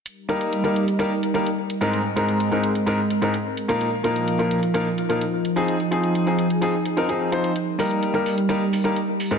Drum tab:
HH |x-xxxxxxx-xxx-xx|x-xxxxxxx-xxx-xx|x-xxxxxxx-xxx-xx|xxxxxxxxx-xxx-xx|

HH |x-oxxxoxx-oxx-ox|